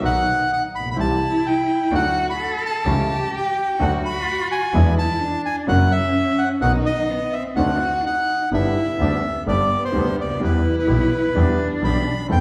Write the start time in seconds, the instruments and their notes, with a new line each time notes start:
0.00 grand piano B1 B2 D#3 F#3 B3 F#4, double bass B1, bandoneon B3 D#4 F#4, cello D#4
0.05 bandoneon F#5
0.53 bandoneon F#5
0.73 double bass A#1, bandoneon B5
0.80 grand piano A1
0.86 grand piano A#1
0.91 grand piano B1, bandoneon B5
0.95 double bass C2, grand piano C2 C3 E3 G3 C4 G4, bandoneon C4 E4 G4, cello E4
1.00 bandoneon A5
1.46 bandoneon G5
1.91 double bass D2, grand piano D2 D3 F#3 A3 F#4, bandoneon A3 D4 F#4, cello F#4
1.95 bandoneon F#5
2.30 bandoneon B5
2.37 cello A4
2.58 bandoneon B5
2.66 bandoneon A5
2.84 double bass C#2, grand piano C#2 C#3 E3 A3 E4, bandoneon A3 C#4 E4, cello G4
3.37 bandoneon G5
3.78 double bass D2, grand piano D2 D3 F#3 A3 F#4, bandoneon A3 D4 F#4, cello F#4
3.83 bandoneon F#5
4.05 bandoneon B5
4.52 bandoneon G#5
4.73 double bass E2, grand piano E2 D3 E3 G#3 B3 E4, bandoneon G#3 D4 E4, cello E4
4.98 bandoneon A5
5.20 cello D4
5.46 bandoneon G#5
5.67 double bass F#1, grand piano F#2 C#3 F#3 A#3 E4, bandoneon A#3 E4 F#4 F#5, cello C#4
5.92 bandoneon E5
6.38 bandoneon F#5
6.61 grand piano B1 B2 D#3 F#3 B3 F#4, double bass B1, bandoneon B3 D#4 F#4 F#5, cello D#4
6.86 bandoneon D#5
7.10 cello B3
7.33 cello C4, bandoneon E5
7.56 double bass D2, grand piano D2 D3 A3 C4 F#4, cello B3, bandoneon C4 D4 F#4 F#5
7.79 cello F#4
8.03 cello D#4, bandoneon F#5
8.50 double bass G1, grand piano G1 G2 D3 G3 B3 G4, bandoneon B3 D4 G4, cello E4
8.54 bandoneon E5
8.99 double bass D2, grand piano D2 D3 G3 B3 G4, bandoneon B3 D4 G4, cello D4
9.22 cello B3
9.47 grand piano G1 G2 D3 G3 B3 G4, double bass G1, bandoneon B3 D4 G4 D5
9.85 bandoneon C5
9.92 grand piano D2 D3 G3 B3 G4, double bass D2, bandoneon B3 D4 G4
10.18 double bass D2, bandoneon D5
10.23 grand piano C#2
10.29 grand piano D2
10.35 grand piano D#2
10.40 double bass E2, grand piano E2 E3 G3 B3 G4, bandoneon B3 E4 G4, cello E4
10.44 bandoneon B4
10.79 bandoneon B4
10.87 grand piano B1 B2 E3 G3 B3 G4, double bass B1, bandoneon B3 E4 G4
11.34 double bass E2, grand piano E2 E3 G3 B3 G4, bandoneon B3 E4 G4, cello D4
11.81 double bass B1, grand piano B1 B2 E3 G3 B3 G4, bandoneon B3 E4 G4 B5
12.28 double bass E2, grand piano E2 E3 A3 C4 A4, cello C4, bandoneon C4 E4 A4 G5